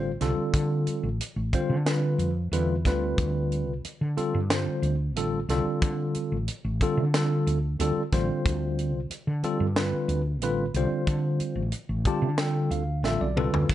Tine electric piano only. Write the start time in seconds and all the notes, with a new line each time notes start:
Already playing: G3 C4 F4 C5
0.21 D3 G3 C4 F4 A4
1.54 D3 G3 C4 F4 C5
1.86 D3 G3 C4 F4 B4
2.52 D3 G3 C4 F4 B4
2.86 D3 G3 C4 F4 B4
4.17 D3 G3 C4 F4 A4
4.51 D3 G3 C4 F4 C5
5.16 D3 G3 C4 F4 A4
5.50 D3 G3 C4 F4 A4
6.82 D3 G3 C4 F4 A4
7.14 D3 G3 C4 F4 A4
7.80 D3 G3 C4 F4 A4
8.13 D3 G3 C4 F4 C5
9.44 D3 G3 C4 F4 A4
9.77 D3 G3 C4 F4 B4
10.43 D3 G3 C4 F4 B4
10.76 D3 G3 C4 F4 C5
12.06 D3 G3 C4 F4 G4 A5
12.39 D3 G3 C4 F4 A4 G5
12.71 F5
13.04 D3 G3 C4 F4 A4 E5
13.21 D5
13.36 D3 G3 C4 F4 A4 B4